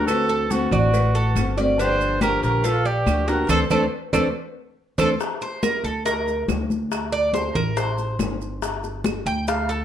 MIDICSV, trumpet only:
0, 0, Header, 1, 2, 480
1, 0, Start_track
1, 0, Tempo, 427046
1, 92, Time_signature, 4, 2, 24, 8
1, 11068, End_track
2, 0, Start_track
2, 0, Title_t, "Trumpet"
2, 0, Program_c, 0, 56
2, 78, Note_on_c, 0, 69, 105
2, 575, Note_on_c, 0, 66, 88
2, 592, Note_off_c, 0, 69, 0
2, 813, Note_off_c, 0, 66, 0
2, 819, Note_on_c, 0, 66, 89
2, 1729, Note_off_c, 0, 66, 0
2, 2021, Note_on_c, 0, 72, 114
2, 2462, Note_off_c, 0, 72, 0
2, 2500, Note_on_c, 0, 70, 102
2, 2718, Note_off_c, 0, 70, 0
2, 2736, Note_on_c, 0, 70, 93
2, 2985, Note_on_c, 0, 69, 99
2, 3002, Note_off_c, 0, 70, 0
2, 3219, Note_on_c, 0, 67, 95
2, 3236, Note_off_c, 0, 69, 0
2, 3691, Note_on_c, 0, 70, 92
2, 3708, Note_off_c, 0, 67, 0
2, 3930, Note_off_c, 0, 70, 0
2, 3935, Note_on_c, 0, 69, 107
2, 4048, Note_off_c, 0, 69, 0
2, 4175, Note_on_c, 0, 69, 94
2, 4289, Note_off_c, 0, 69, 0
2, 4648, Note_on_c, 0, 69, 93
2, 4764, Note_off_c, 0, 69, 0
2, 5614, Note_on_c, 0, 69, 101
2, 5728, Note_off_c, 0, 69, 0
2, 11068, End_track
0, 0, End_of_file